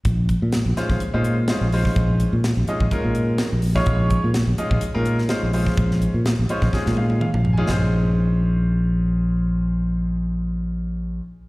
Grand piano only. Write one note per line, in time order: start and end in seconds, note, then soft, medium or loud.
0.77 0.99 G#3 medium
0.77 0.99 C#4 medium
0.77 1.00 D#4 medium
0.77 1.00 F4 medium
0.77 1.00 C5 medium
1.13 1.36 G#3 medium
1.13 1.36 C#4 medium
1.13 1.36 D#4 medium
1.13 1.36 F4 medium
1.13 1.36 C5 medium
1.49 1.64 G#3 medium
1.49 1.65 C#4 medium
1.49 1.65 D#4 medium
1.49 1.64 F4 medium
1.49 1.65 C5 medium
1.73 2.33 G#3 medium
1.73 2.33 C#4 medium
1.73 2.33 D#4 medium
1.73 2.33 F4 medium
1.73 2.33 C5 loud
2.68 2.84 G#3 medium
2.68 2.84 C#4 medium
2.68 2.84 D#4 medium
2.68 2.84 F4 medium
2.68 2.84 D#5 medium
2.91 3.44 G#3 medium
2.91 3.44 C#4 medium
2.91 3.44 D#4 medium
2.91 3.44 F4 medium
2.91 3.44 A#4 medium
3.75 4.27 G#3 medium
3.75 4.27 C#4 medium
3.75 4.27 D#4 medium
3.75 4.27 F4 medium
3.75 4.28 C#5 loud
4.58 4.81 G#3 medium
4.58 4.81 C#4 medium
4.58 4.81 D#4 medium
4.58 4.81 F4 medium
4.58 4.81 D#5 medium
4.94 5.17 G#3 medium
4.94 5.17 C#4 medium
4.94 5.17 D#4 medium
4.94 5.17 F4 medium
4.94 5.17 A#4 loud
5.30 5.46 G#3 medium
5.30 5.46 C#4 medium
5.30 5.46 D#4 medium
5.30 5.46 F4 medium
5.30 5.46 C5 medium
5.53 6.14 G#3 medium
5.53 6.14 C#4 medium
5.53 6.14 D#4 medium
5.53 6.14 F4 medium
5.53 6.14 C5 medium
6.50 6.65 G#3 medium
6.50 6.65 C#4 medium
6.50 6.66 D#4 medium
6.50 6.65 F4 medium
6.50 6.66 C5 medium
6.50 6.72 C#5 medium
6.73 7.26 G#3 medium
6.73 7.26 C#4 medium
6.73 7.26 D#4 medium
6.73 7.26 F4 medium
6.73 7.26 G#4 medium
6.73 6.96 D#5 medium
6.97 7.19 F5 medium
7.21 7.51 F5 medium
7.53 7.68 G#5 medium
7.58 7.66 G#3 medium
7.58 7.66 C#4 medium
7.58 7.68 D#4 medium
7.58 7.68 F4 medium
7.58 7.69 G#4 loud
7.67 11.18 G#3 medium
7.67 11.18 C#4 medium
7.67 11.20 D#4 medium
7.67 11.20 F4 medium
7.67 11.21 C5 medium